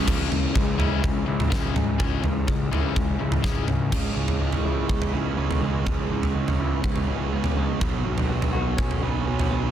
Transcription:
<<
  \new Staff \with { instrumentName = "Clean electric guitar" } { \time 4/4 \key cis \minor \tempo 4 = 124 cis8 e8 gis8 e'8 cis'8 e'8 gis8 cis'8 | cis8 e8 gis8 e'8 cis'8 e'8 gis8 cis'8 | cis8 e8 gis8 e'8 b8 gis8 b8 gis8 | cis8 e8 gis8 e'8 b8 gis8 b8 gis8 |
b,8 fis8 b8 fis'8 cis'8 b8 cis'8 b8 | }
  \new Staff \with { instrumentName = "Distorted electric guitar" } { \clef bass \time 4/4 \key cis \minor r1 | r1 | <cis gis cis'>2~ <cis gis cis'>8 <cis gis cis'>8 <cis gis cis'>4 | <cis gis cis'>2~ <cis gis cis'>8 <cis gis cis'>8 <cis gis cis'>4 |
<b, fis b>2~ <b, fis b>8 <b, fis b>8 <b, fis b>4 | }
  \new Staff \with { instrumentName = "Overdriven electric guitar" } { \clef bass \time 4/4 \key cis \minor <cis gis cis'>8 <cis gis>8 <cis gis>8 <cis gis cis'>8 <cis gis>8 <cis gis>8 <cis gis cis'>8 <cis gis>8 | <cis gis cis'>8 <cis gis>8 <cis gis>8 <cis gis cis'>8 <cis gis>8 <cis gis>8 <cis gis cis'>8 <cis gis>8 | r1 | r1 |
r1 | }
  \new Staff \with { instrumentName = "Picked electric bass" } { \clef bass \time 4/4 \key cis \minor cis,8 cis,8 cis,4 cis,8 cis,8 cis,8 cis,8 | cis,8 cis,8 cis,8 cis,8 cis,8 cis,8 cis,8 cis,8 | cis,8 cis,8 cis,8 cis,8 cis,8 cis,8 cis,8 cis,8 | cis,8 cis,8 cis,8 cis,8 cis,8 cis,8 cis,8 cis,8 |
b,,8 b,,8 b,,8 b,,8 r8 b,,8 b,,8 b,,8 | }
  \new DrumStaff \with { instrumentName = "Drums" } \drummode { \time 4/4 <cymc bd tomfh>8 tomfh8 bd8 tomfh8 <bd tomfh>8. <tomfh toml>16 <bd sn>8 <tomfh toml>8 | <bd tomfh>8 tomfh8 bd8 tomfh8 <bd tomfh>8. <tomfh toml>16 <bd sn>8 <tomfh toml>8 | <cymc bd tomfh>8. tomfh16 r16 tomfh8. bd16 tomfh8. r16 tomfh8. | <bd tomfh>8. tomfh16 r16 tomfh8. bd16 tomfh8. r16 tomfh8. |
<bd tomfh>8. tomfh16 r16 tomfh8. bd16 tomfh8. r16 tomfh8. | }
>>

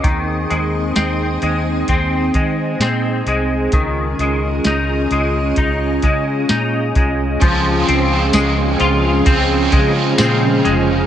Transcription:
<<
  \new Staff \with { instrumentName = "String machine" } { \time 4/4 \key des \major \tempo 4 = 65 << { <c' ees' ees''>1 | <des' f' ees''>1 | <des aes' f''>1 | } \\ { aes'1~ | aes'1 | c''1 | } >> }
  \new Staff \with { instrumentName = "Clean electric guitar" } { \clef bass \time 4/4 \key des \major ees8 aes8 c'8 aes8 c'8 aes8 c'8 aes8 | ees8 aes8 ees'8 aes8 ees'8 aes8 ees'8 aes8 | f8 c'8 aes8 f'8 c'8 aes8 c'8 aes8 | }
  \new Staff \with { instrumentName = "Overdriven electric guitar" } { \clef bass \time 4/4 \key des \major r1 | r1 | <des f aes c' f'>2 <des f aes c' f'>2 | }
  \new Staff \with { instrumentName = "Fingered electric bass" } { \clef bass \time 4/4 \key des \major ees,8 ees,8 ees,8 ees,8 ees,8 ees8 bes,8 c,8 | des,8 des,8 des,8 des,8 des,8 des8 bes,8 c,8 | des,8 des,8 des,8 des,8 des,8 des8 bes,8 f,,8 | }
  \new DrumStaff \with { instrumentName = "Drums" } \drummode { \time 4/4 <hh bd>8 hh8 <hh sn>8 hh8 <hh bd>8 <hh bd>8 <hh sn>8 hh8 | <hh bd>8 hh8 <hh sn>8 hh8 <hh bd>8 <hh bd>8 <hh sn>8 <hh bd>8 | <hh bd>8 hh8 <hh sn tamb>8 hh8 <hh bd>8 <hh bd>8 <hh sn tamb>8 hh8 | }
>>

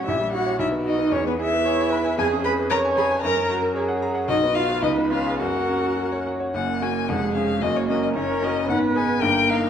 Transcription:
<<
  \new Staff \with { instrumentName = "Violin" } { \time 2/4 \key e \major \tempo 4 = 112 e''8 fis''8 e''8 dis''8 | cis''16 b'16 e''4. | \key fis \major gis''8 b''8 ais''8 gis''8 | ais''8 r4. |
dis''8 eis''8 dis''8 eis''8 | fis''4. r8 | fis''8 gis''8 fis''8 eis''8 | dis''16 cis''16 dis''16 dis''16 cis''8 dis''8 |
fis''8 gis''8 g''8 eis''8 | }
  \new Staff \with { instrumentName = "Viola" } { \time 2/4 \key e \major g'4 fis'4 | gis'4 cis''8 b'8 | \key fis \major gis'4 cis''4 | ais'4 gis'4 |
fis'4 b'4 | ais'4. r8 | r4 gis'4 | fis'4 ais'4 |
b'4 ais'4 | }
  \new Staff \with { instrumentName = "Cello" } { \time 2/4 \key e \major e'8 fis'8 e'8 dis'8 | cis'16 b16 e'4. | \key fis \major gis'8 b'8 ais'8 gis'8 | ais'8 r4. |
dis'8 eis'8 dis'8 eis'8 | fis'4. r8 | ais4 gis4 | ais4 cis'4 |
b4 ais4 | }
  \new Staff \with { instrumentName = "Grand piano" } { \time 2/4 \key e \major ais,,16 g16 e'16 cis''16 b,,16 b16 fis'16 b'16 | e,16 b16 gis'16 b'16 gis'16 gis''16 b''16 gis''16 | \key fis \major eis,16 cis'16 gis'16 b'16 cis''16 gis''16 b''16 gis''16 | fis,16 cis'16 fis'16 ais'16 cis''16 fis''16 ais''16 fis''16 |
b,,16 b16 fis'16 b'16 cis,16 b16 cis'16 gis'16 | fis,16 ais16 cis'16 fis'16 ais'16 cis''16 fis''16 cis''16 | <fis,, fis,>8 <ais cis' fis'>8 <eis,, eis,>8 <cis' gis'>8 | <fis,, fis,>8 <cis' fis' ais'>8 <fis,, fis,>8 <cis' fis' ais'>8 |
<gis,, gis,>8 <b dis' gis'>8 <g,, g,>8 <ais dis' ais'>8 | }
>>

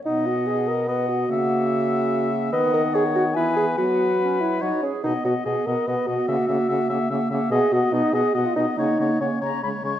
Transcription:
<<
  \new Staff \with { instrumentName = "Flute" } { \time 3/4 \key b \major \tempo 4 = 144 fis''2 fis''4 | fis''2. | fis''2 gis''4 | fis''2 fis''8 r8 |
fis''8 fis''8 fis''8 fis''8 fis''8 fis''8 | fis''8 fis''8 fis''8 fis''8 fis''8 fis''8 | \key fis \major fis''8 fis''8 fis''8 fis''8 fis''8 fis''8 | fis''8 fis''8 fis''8 ais''8 b''8 cis'''8 | }
  \new Staff \with { instrumentName = "Oboe" } { \time 3/4 \key b \major dis''2 dis''4 | e''2. | dis''4 cis''4 b'4 | b'2 cis''8 r8 |
dis''8 dis''8 dis''8 dis''8 dis''8 dis''8 | e''8 e''8 e''8 e''8 e''8 e''8 | \key fis \major dis''8 dis''8 dis''8 dis''8 dis''8 dis''8 | cis''8 cis''8 cis''8 cis''8 cis''8 cis''8 | }
  \new Staff \with { instrumentName = "Bassoon" } { \time 3/4 \key b \major dis'8 fis'8 gis'8 ais'8 b'8 fis'8~ | fis'2~ fis'8 r8 | b'8 ais'8 gis'8 fis'8 e'8 gis'8 | fis'4. e'8 dis'8 cis'8 |
dis'8 fis'8 gis'8 ais'8 b'8 fis'8~ | fis'2~ fis'8 r8 | \key fis \major gis'8 fis'8 dis'8 gis'8 fis'16 eis'16 dis'8 | dis'4 cis'4 r4 | }
  \new Staff \with { instrumentName = "Clarinet" } { \time 3/4 \key b \major b2 b4 | ais2. | b2 b4 | b4 cis'8 e'8 fis'8 gis'8 |
b8 b8 b8 b8 b8 b8 | ais8 ais8 ais8 ais8 ais8 ais8 | \key fis \major b8 b8 b8 b8 b8 b8 | ais8 ais8 ais8 ais8 gis8 gis8 | }
  \new Staff \with { instrumentName = "French horn" } { \clef bass \time 3/4 \key b \major b,2. | cis2. | dis2 e4 | fis2 fis8 r8 |
b,8 b,8 b,8 b,8 b,8 b,8 | cis8 cis8 cis8 cis8 cis8 cis8 | \key fis \major b,8 b,8 b,8 b,8 b,8 b,8 | cis8 cis8 cis8 cis8 cis8 cis8 | }
>>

